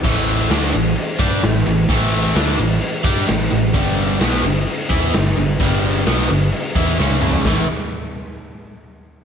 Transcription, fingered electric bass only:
X:1
M:4/4
L:1/8
Q:1/4=130
K:Amix
V:1 name="Fingered electric bass" clef=bass
A,,,2 D,, A,,, z G,, A,,, A,,, | A,,,2 D,, A,,, z G,, A,,, A,,, | G,,,2 B,,, G,,, z E,, G,,, G,,, | G,,,2 B,,, G,,, z E,, C,,2 |
A,,, z6 z |]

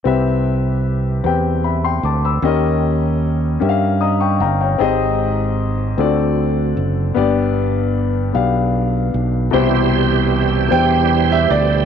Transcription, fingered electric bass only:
X:1
M:6/8
L:1/8
Q:3/8=51
K:C
V:1 name="Fingered electric bass" clef=bass
C,,3 E,,2 D,, | _E,,3 G,,2 G,,, | _A,,,3 D,,2 ^F,,, | G,,,3 B,,,2 B,,, |
C,,3 E,,2 D,, |]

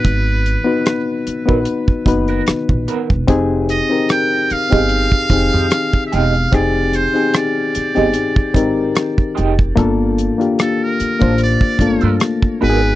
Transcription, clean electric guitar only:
X:1
M:4/4
L:1/16
Q:"Swing 16ths" 1/4=74
K:Fdor
V:1 name="Clean electric guitar"
z6 z [_C_GB] z3 [CGB] z2 [CGB] z | z6 z [A,EG] z3 [A,EG] z2 [A,EG] z | z6 z [A,EG] z6 [A,EG] z | z6 z [B,F=A] z3 [B,FA] z2 [_C_GB] z |]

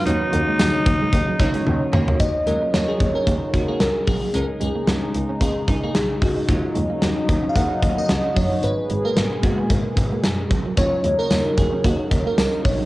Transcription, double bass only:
X:1
M:4/4
L:1/8
Q:"Swing 16ths" 1/4=112
K:Ebm
V:1 name="Double bass" clef=bass
E,, E,, E,, E,, E,, D,, E,, E,, | E,, E,, E,, E,, E,, E,, D,, C,, | D,, D,, D,, D,, D,, D,, C,, D,, | E,, E,, E,, E,, E,, E,, D,, G,,, |
A,,, A,,, A,,, A,,, A,,, A,,, G,,, D,, | E,, E,, E,, E,, E,, E,, D,, C,, |]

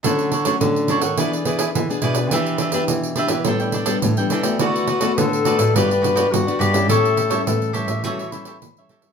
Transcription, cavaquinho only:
X:1
M:4/4
L:1/16
Q:1/4=105
K:D
V:1 name="Cavaquinho"
[DAcf]2 [DAcf] [DAcf] z2 [DAcf] [Acf] [E^GBd] [GBd] [EGBd] [EGBd] z [GBd] [EGBd] [GBd] | [DGBe]2 [DGBe] [DGBe] z2 [DGBe] [GBe] [DAdg] [Adg] [DAdg] [DAdg] z [Adg] [DAdg] [Adg] | [FABd]2 [FABd] [FABd] z2 [FABd] [ABd] [FGBd] [GBd] [FGBd] [FGBd] z [GBd] [FGBd] [GBd] | [GAce]2 [GAce] [GAce] z2 [GAce] [Ace] [GAce] [Ace] [GAce] [GAce] z [Ace] [GAce] [ce] |]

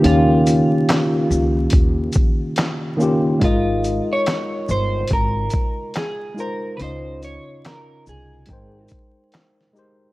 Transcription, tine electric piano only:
X:1
M:4/4
L:1/8
Q:"Swing 16ths" 1/4=71
K:Ab
V:1 name="Tine electric piano"
[E,B,DFG]4 z3 [E,B,DFG] | [A,EFBe]4 z3 [A,EFBc] | [D,DEFe]4 [A,EBcg]3 [A,EGBc] |]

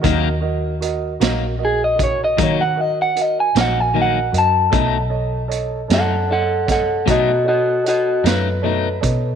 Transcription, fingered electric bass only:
X:1
M:12/8
L:1/8
Q:3/8=51
K:Ebm
V:1 name="Fingered electric bass" clef=bass
E,,3 B,,,3 E,3 B,,,2 G,, | =B,,,3 ^F,,3 =B,,3 F,,2 B,, |]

